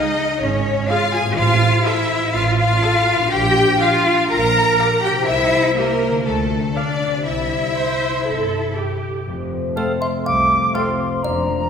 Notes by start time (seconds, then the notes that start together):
Already playing: C#3 F3 C#4 D#4 F4 G#4 D#5
0.41 G#1 C#4 C#5
0.89 F4 G#4 F5
1.13 G#4 G#5
1.20 A2
1.25 C4
1.29 F4 G4
1.34 A1 A4 F5
1.38 F4 F5
1.85 E4 A4 E5 F5
2.34 A1 F4 F5
2.59 F4 F5
2.83 A4 F5
3.15 A#2
3.19 D4
3.24 F4
3.28 A#1 G4 G5
3.80 F4 G4 F5
4.30 A#1 A#4 A#5
4.79 G4 F5
5.03 G4 G5
5.10 C3
5.15 C4
5.19 E4
5.24 E4 G4 E5
5.28 C2
5.76 A#3 G4 A#4 E5
6.09 D3
6.13 A3
6.18 D4
6.23 D2 A3 F4 A4
6.27 A4
6.75 D4 D5 F5
7.08 C3
7.12 C4
7.17 G4
7.25 C2 E4 E5
7.75 C5
8.26 G1 A4
8.77 G4
9.27 F1 F2 A3 C4
9.53 C3
9.76 A3 C4 F4 A4 C5 F5 A5
10.01 C4 E5 C6
10.26 C2 F2 F5 D6
10.74 A3 C4 F4 A4 C5 F5 C6
11.00 C4
11.23 F1 F2 A#3 D4 D5 A#5
11.49 F3